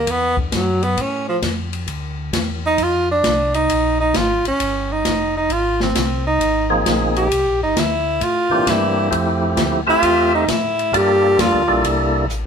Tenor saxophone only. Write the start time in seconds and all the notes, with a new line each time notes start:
Already playing: A#3
0.10 B3
0.39 D3
0.55 F#3
0.83 B3
1.01 C#4
1.29 F3
2.66 D#4
2.83 F4
3.11 D4
3.55 D#4
4.00 D#4
4.17 F4
4.48 C#4
4.92 D#4
5.37 D#4
5.52 F4
5.82 C4
6.27 D#4
7.17 G4
7.63 D#4
7.80 E4
8.23 F4
8.70 E4
9.90 F4
10.34 D#4
10.50 E4
10.96 G4
11.41 F4